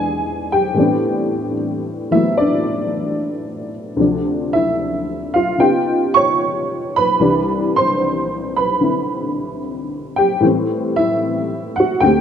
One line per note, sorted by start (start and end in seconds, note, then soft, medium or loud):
0.00 0.73 E2 medium
0.00 0.74 E3 medium
0.00 0.77 G#3 medium
0.00 0.78 D4 medium
0.00 0.77 G#4 medium
0.00 0.77 G#5 medium
0.52 1.54 G4 medium
0.52 1.53 G5 medium
0.74 3.97 A2 medium
0.74 2.09 E3 medium
0.74 3.98 G3 soft
0.74 2.12 B3 medium
0.78 3.99 C4 medium
0.78 2.38 D4 medium
2.11 3.98 E3 soft
2.11 3.98 F#3 soft
2.11 3.98 A3 soft
2.11 3.99 B3 soft
2.11 2.37 E4 medium
2.11 2.35 E5 medium
2.37 3.70 D4 medium
2.37 3.69 D5 medium
3.97 5.58 D2 medium
3.97 5.59 C3 soft
3.97 5.60 F3 soft
4.01 5.61 D4 medium
4.53 5.31 E4 medium
4.53 5.36 E5 medium
5.34 5.59 F4 medium
5.34 5.57 F5 medium
5.58 7.20 C#3 soft
5.58 7.20 B3 soft
5.58 7.20 D#4 soft
5.58 7.21 F4 medium
5.58 6.12 G4 medium
5.58 6.11 G5 medium
6.14 6.92 C#5 medium
6.14 6.97 C#6 medium
6.96 7.73 B4 medium
6.96 7.72 B5 medium
7.20 10.42 C2 medium
7.20 10.42 C3 medium
7.20 10.41 E3 medium
7.20 10.42 G3 medium
7.20 10.43 D4 medium
7.76 8.53 C5 medium
7.76 8.52 C6 medium
8.56 9.59 B4 medium
8.56 9.58 B5 medium
8.81 10.42 D3 soft
8.81 10.43 C4 soft
8.81 10.43 E4 soft
10.16 10.24 G4 medium
10.16 10.22 G5 medium
10.40 12.02 A2 medium
10.40 12.03 E3 medium
10.40 12.04 G3 medium
10.45 12.04 C4 medium
10.96 11.74 E4 medium
10.96 11.80 E5 medium
11.76 12.02 F#4 medium
11.76 12.03 F#5 medium
12.00 12.21 D2 medium
12.00 12.21 D3 medium
12.00 12.21 G5 loud
12.05 12.21 A3 medium
12.05 12.21 C4 medium
12.05 12.21 G4 medium